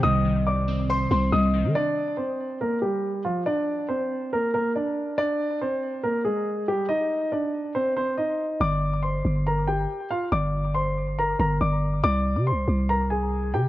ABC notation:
X:1
M:4/4
L:1/16
Q:1/4=140
K:Gphr
V:1 name="Grand piano"
[ee']4 [dd']4 [cc']2 [cc']2 [ee']4 | [Dd]4 [Cc]4 [B,B]2 [G,G]4 [F,F]2 | [Dd]4 [Cc]4 [B,B]2 [B,B]2 [Dd]4 | [Dd]4 [Cc]4 [B,B]2 [A,A]4 [G,G]2 |
[Ee]4 [Dd]4 [Cc]2 [Cc]2 [Ee]4 | [dd']4 [cc']4 [Bb]2 [Gg]4 [Ff]2 | [dd']4 [cc']4 [Bb]2 [Bb]2 [dd']4 | [dd']4 [cc']4 [Bb]2 [Aa]4 [Gg]2 |]
V:2 name="Synth keys" clef=bass
[C,E,G,Cc]2 E,4 C2 c2 C2 G,2 E,2 | z16 | z16 | z16 |
z16 | z16 | z16 | z16 |]
V:3 name="808-style bass" clef=bass
C,,8- C,,2 C,,2 C,,3 E, | z16 | z16 | z16 |
z16 | G,,,6 G,,,6 z4 | G,,,8- G,,,2 G,,,2 G,,,4 | C,,3 C,3/2 C,,3/2 C,,8 C,2 |]